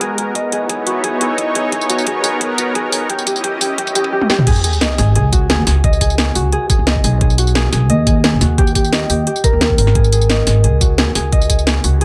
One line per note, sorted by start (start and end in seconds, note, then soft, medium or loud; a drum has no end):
0.00 0.34 G#3 medium
0.00 0.34 B3 medium
0.00 0.34 F#4 medium
0.00 0.86 F#4 medium
0.00 0.18 G#4 medium
0.00 0.34 A#4 medium
0.00 0.35 D#5 medium
0.00 kick medium
0.00 closed hi-hat medium
0.18 0.52 G#4 medium
0.18 closed hi-hat medium
0.35 1.71 B3 medium
0.35 3.07 D#4 medium
0.35 1.71 E4 medium
0.35 3.07 C#5 medium
0.35 1.38 D#5 medium
0.35 kick medium
0.35 closed hi-hat medium
0.52 0.69 G#4 medium
0.52 closed hi-hat medium
0.69 1.03 G#4 medium
0.69 kick loud
0.69 closed hi-hat medium
0.87 1.89 F#4 medium
0.87 closed hi-hat medium
1.04 1.21 G#4 loud
1.04 kick medium
1.04 closed hi-hat medium
1.21 1.55 G#4 medium
1.21 closed hi-hat medium
1.38 3.17 D#5 medium
1.38 kick medium
1.38 closed hi-hat medium
1.55 1.72 G#4 medium
1.55 closed hi-hat medium
1.72 3.08 B3 medium
1.72 2.06 G#4 medium
1.72 3.08 A#4 medium
1.72 kick loud
1.72 closed hi-hat medium
1.81 tambourine soft
1.89 2.58 F#4 medium
1.89 closed hi-hat medium
1.89 tambourine medium
1.98 tambourine soft
2.07 2.23 G#4 medium
2.07 kick loud
2.07 closed hi-hat medium
2.24 2.41 G#4 medium
2.24 open hi-hat medium
2.24 tambourine medium
2.41 2.75 G#4 medium
2.41 kick loud
2.41 closed hi-hat medium
2.58 3.16 F#4 medium
2.58 closed hi-hat medium
2.58 tambourine medium
2.75 2.92 G#4 medium
2.75 kick loud
2.75 closed hi-hat medium
2.92 3.16 G#4 medium
2.92 open hi-hat medium
2.92 tambourine medium
3.09 4.11 C#4 medium
3.09 4.11 E4 medium
3.09 4.11 G4 medium
3.09 3.26 G4 medium
3.09 4.11 D#5 medium
3.09 kick loud
3.09 closed hi-hat medium
3.19 tambourine soft
3.27 3.43 G4 medium
3.27 kick loud
3.27 closed hi-hat medium
3.27 tambourine medium
3.36 tambourine soft
3.44 3.61 G4 medium
3.44 kick loud
3.44 closed hi-hat medium
3.61 3.78 G4 medium
3.61 kick loud
3.61 open hi-hat medium
3.61 tambourine medium
3.78 3.95 G4 medium
3.78 kick loud
3.78 closed hi-hat medium
3.87 kick medium
3.87 tambourine soft
3.95 4.12 G4 medium
3.95 kick loud
3.95 closed hi-hat medium
3.95 tambourine medium
4.04 kick medium
4.12 4.29 G4 medium
4.21 high tom medium
4.30 4.53 G4 medium
4.30 snare medium
4.39 mid tom medium
4.47 4.64 G#4 loud
4.47 kick loud
4.47 closed hi-hat medium
4.47 crash loud
4.47 sub drop medium
4.56 tambourine soft
4.64 4.98 G#4 medium
4.64 closed hi-hat medium
4.64 tambourine medium
4.73 tambourine soft
4.81 5.84 D#5 medium
4.81 snare loud
4.81 closed hi-hat medium
4.98 5.17 G#1 loud
4.98 5.15 G#4 medium
4.98 snare soft
4.98 open hi-hat medium
4.98 tambourine medium
5.15 5.59 C#2 loud
5.15 5.49 G#4 medium
5.15 closed hi-hat medium
5.33 6.35 F#4 medium
5.33 kick loud
5.33 closed hi-hat loud
5.33 tambourine medium
5.50 5.66 G#4 loud
5.50 snare loud
5.50 closed hi-hat medium
5.59 5.66 D#2 medium
5.67 6.34 C#2 medium
5.67 6.01 G#4 medium
5.67 snare soft
5.67 open hi-hat medium
5.67 tambourine medium
5.84 6.86 D#5 medium
5.84 kick loud
5.84 closed hi-hat medium
5.93 tambourine soft
6.01 6.18 G#4 medium
6.01 kick medium
6.01 closed hi-hat medium
6.01 tambourine medium
6.10 tambourine soft
6.18 6.52 G#4 medium
6.18 snare loud
6.18 closed hi-hat medium
6.35 6.51 C#2 loud
6.35 7.38 F#4 medium
6.35 open hi-hat medium
6.35 tambourine medium
6.52 6.69 G#4 loud
6.52 closed hi-hat medium
6.70 7.04 G#4 medium
6.70 kick loud
6.70 closed hi-hat medium
6.70 tambourine medium
6.79 7.03 C#2 medium
6.87 7.89 D#5 medium
6.87 snare loud
6.87 closed hi-hat medium
6.96 kick medium
7.04 7.71 B1 loud
7.04 7.21 G#4 medium
7.04 open hi-hat medium
7.04 tambourine medium
7.21 7.55 G#4 medium
7.21 kick loud
7.21 closed hi-hat medium
7.30 tambourine soft
7.38 8.41 F#4 medium
7.38 closed hi-hat medium
7.38 tambourine medium
7.47 tambourine soft
7.55 7.72 G#4 loud
7.55 snare loud
7.55 closed hi-hat medium
7.73 7.90 B1 loud
7.73 8.06 G#4 medium
7.73 snare soft
7.73 open hi-hat medium
7.73 tambourine medium
7.90 8.34 D#2 loud
7.90 8.92 D#5 medium
7.90 closed hi-hat medium
8.07 8.24 G#4 medium
8.07 kick loud
8.07 closed hi-hat medium
8.07 tambourine medium
8.24 8.64 G#4 medium
8.24 snare loud
8.24 closed hi-hat medium
8.33 8.40 F#1 medium
8.41 9.08 D#2 medium
8.41 8.64 F#4 medium
8.41 snare soft
8.41 open hi-hat medium
8.41 tambourine medium
8.58 8.75 G4 loud
8.58 kick loud
8.58 closed hi-hat medium
8.67 tambourine soft
8.75 9.09 G4 medium
8.75 kick medium
8.75 closed hi-hat medium
8.75 tambourine medium
8.84 tambourine soft
8.92 10.29 D#5 medium
8.92 snare loud
8.92 closed hi-hat medium
9.10 9.25 D#2 medium
9.10 9.26 G4 medium
9.10 open hi-hat medium
9.10 tambourine medium
9.27 10.01 G4 medium
9.27 closed hi-hat medium
9.36 tambourine soft
9.44 9.78 A#4 loud
9.44 kick loud
9.44 closed hi-hat medium
9.44 tambourine medium
9.53 9.77 D#2 medium
9.61 10.01 G5 medium
9.61 snare loud
9.61 closed hi-hat medium
9.70 kick medium
9.78 10.45 G#1 loud
9.78 11.90 A#4 medium
9.78 open hi-hat medium
9.78 tambourine medium
9.87 snare soft
9.95 10.12 G#4 loud
9.95 kick loud
9.95 closed hi-hat medium
10.04 tambourine soft
10.12 10.46 G#4 medium
10.12 closed hi-hat medium
10.12 tambourine medium
10.21 tambourine soft
10.30 11.32 D#5 medium
10.30 snare loud
10.30 closed hi-hat medium
10.47 10.66 G#1 loud
10.47 10.64 G#4 medium
10.47 snare soft
10.47 open hi-hat medium
10.47 tambourine medium
10.64 11.07 C#2 medium
10.64 10.98 G#4 medium
10.64 closed hi-hat medium
10.81 11.84 F#4 medium
10.81 kick loud
10.81 closed hi-hat medium
10.81 tambourine medium
10.98 11.15 G#4 loud
10.98 snare loud
10.98 closed hi-hat medium
11.07 11.15 D#2 medium
11.15 11.83 C#2 medium
11.15 11.49 G#4 medium
11.15 snare soft
11.15 open hi-hat medium
11.15 tambourine medium
11.32 12.05 D#5 medium
11.32 kick loud
11.32 closed hi-hat medium
11.41 tambourine soft
11.50 11.66 G#4 medium
11.50 kick medium
11.50 closed hi-hat medium
11.50 tambourine medium
11.59 tambourine soft
11.67 12.01 G#4 medium
11.67 snare loud
11.67 closed hi-hat medium
11.84 11.99 C#2 loud
11.84 12.05 F#4 medium
11.84 open hi-hat medium
11.84 tambourine medium
12.01 12.05 G#4 loud
12.01 closed hi-hat medium